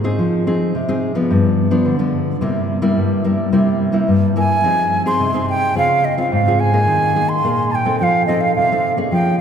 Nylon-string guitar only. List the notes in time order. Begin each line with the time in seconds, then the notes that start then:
Already playing: G#2
0.04 C4 D#4 G#4
0.19 F3
0.47 C4 D#4 G#4
0.75 C3
0.88 C4 D#4 G#4
1.15 F3 B3 D4
1.31 G2
1.71 F3 B3 D4
1.85 D3
1.99 F3 B3 D4
2.41 C3 G3 A#3 E4
2.82 G3 A#3 E4
2.97 G2
3.24 G3 A#3 E4
3.52 C3 G3 A#3 E4
3.92 G3 A#3 E4
4.08 G2
4.36 G3 A#3 E4
4.64 F3 C4 D#4 G#4
5.06 C4 D#4 G#4
5.20 C3
5.34 C4 D#4 G#4
5.75 C#3 C4 F4 G#4
6.18 C4 F4 G#4
6.32 G#2
6.47 C4 F4 G#4
6.73 A#3 D#4 G#4
6.88 D#3
7.15 A#3 D#4 G#4
7.44 A#2 A#3 D#4 G#4
7.85 C4 D#4 A4
8.01 F3
8.28 C4 D#4 A4
8.57 C3
8.72 C4 D#4 A4
8.97 A#3 C#4 G#4
9.12 F3